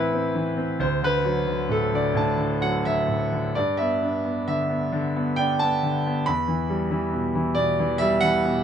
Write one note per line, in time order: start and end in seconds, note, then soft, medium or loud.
0.00 0.75 A2 medium
0.00 0.35 E3 medium
0.00 0.13 C4 soft
0.00 0.81 E4 medium
0.00 0.77 B4 medium
0.00 0.81 E5 medium
0.00 0.82 F#5 medium
0.13 0.55 C4 soft
0.35 0.79 E3 soft
0.57 0.79 C4 soft
0.79 3.51 D2 medium
0.79 1.03 C5 medium
1.02 1.46 D3 soft
1.02 1.73 B4 medium
1.25 2.60 F#3 soft
1.47 1.91 D3 soft
1.69 2.13 A2 soft
1.69 1.94 A4 medium
1.92 2.36 D3 soft
1.92 2.17 D5 medium
2.14 3.07 A2 medium
2.14 2.64 A5 medium
2.37 2.84 D3 soft
2.61 3.52 F#3 soft
2.61 2.84 F#5 medium
2.85 3.31 D3 soft
2.85 3.57 E5 medium
3.08 3.53 A2 soft
3.32 3.55 D3 soft
3.55 6.23 G2 medium
3.55 3.79 D5 medium
3.77 4.23 B3 soft
3.77 4.46 E5 medium
4.03 5.37 D4 soft
4.25 4.68 B3 soft
4.47 4.91 D3 soft
4.47 5.41 E5 medium
4.70 5.15 B3 soft
4.92 5.81 D3 medium
5.16 5.60 B3 soft
5.36 6.24 D4 medium
5.36 5.60 G5 medium
5.59 6.05 B3 soft
5.59 6.28 A5 medium
5.83 6.25 D3 soft
6.06 6.27 B3 soft
6.26 8.64 E2 medium
6.26 7.09 B5 medium
6.48 6.90 E3 soft
6.69 7.99 G3 soft
6.91 7.33 E3 soft
7.13 7.55 B2 soft
7.35 7.78 E3 soft
7.55 8.43 B2 medium
7.55 8.00 D5 medium
7.79 8.21 E3 medium
7.98 8.64 G3 medium
7.98 8.22 E5 medium
8.21 8.64 E3 soft
8.21 8.64 F#5 medium
8.45 8.64 B2 medium